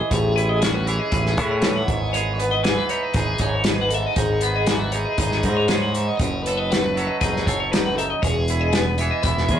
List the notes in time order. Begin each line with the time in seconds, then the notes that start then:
Already playing: E3 E4 G#4
0.00 D#5
0.10 A1 A2 G#4 C#5, kick, closed hi-hat
0.36 E4 B4, closed hi-hat
0.49 D#5
0.61 C#4 F#4 G#5, snare, closed hi-hat
0.74 B4
0.87 E3 E4 G#4 C#5, closed hi-hat
0.99 D#5
1.12 A1 E4 B4, kick, closed hi-hat
1.26 snare
1.37 A2 E4 A4, kick, closed hi-hat
1.51 C#5
1.62 E3 E4 B4 C#5, snare, closed hi-hat
1.76 F#5
1.87 G#1 G#2 E5, kick, closed hi-hat
2.01 D#5
2.13 G#4 C#5 D#5, closed hi-hat
2.34 B4 C#5
2.39 B3 B4, closed hi-hat
2.51 D#5
2.64 E3 G#4 G#5, snare, closed hi-hat
2.78 B4
2.89 D#4 C#5, closed hi-hat
3.03 D#5
3.14 G#1 D#4 G#4 B4, kick, closed hi-hat
3.38 G#1 G#2 D#4 G#4 C#5, kick, closed hi-hat
3.55 C#5
3.64 G#4 B4, snare, closed hi-hat
3.81 F#5
3.90 G#2 A4, closed hi-hat
3.94 E5
4.06 D#5
4.16 G#1 D#4 G#4 C#5, kick, closed hi-hat
4.41 B3 B4, closed hi-hat
4.56 D#5
4.66 E3 D#4 G#5, snare, closed hi-hat
4.71 F#4
4.80 B4
4.92 D#4 G#4 C#5, closed hi-hat
5.06 D#5
5.18 G#1 D#4 B4, kick, closed hi-hat
5.32 snare
5.43 G#2 D#4 G#4, kick, closed hi-hat
5.57 C#5
5.68 G#4 B4 C#5, snare, closed hi-hat
5.82 F#5
5.94 G#2 E5, closed hi-hat
6.08 D#5
6.17 F#1 F#2 C#5 D#5, kick, closed hi-hat
6.43 B4, closed hi-hat
6.47 A4
6.57 D#5
6.71 A3 F#5, snare, closed hi-hat
6.82 B4
6.96 F#3 A4 C#5, closed hi-hat
7.07 D#5
7.21 F#1 D#4 G#4 B4, kick, closed hi-hat
7.36 snare
7.46 F#1 G#4 A4 C#5, kick, closed hi-hat
7.60 C#5
7.72 F#2 D#4 B4, snare, closed hi-hat
7.86 F#5
7.96 D#4 A4 E5, closed hi-hat
8.10 D#5
8.22 E1 E2 G#4 C#5, kick, closed hi-hat
8.48 E4 B4, closed hi-hat
8.61 D#5
8.73 B3 B4 G#5, snare, closed hi-hat
8.87 B4
8.98 E3 G#4 C#5 E5, closed hi-hat
9.11 D#5
9.23 E1 E4 B4, kick, closed hi-hat
9.38 snare
9.48 E2 G#4, kick, closed hi-hat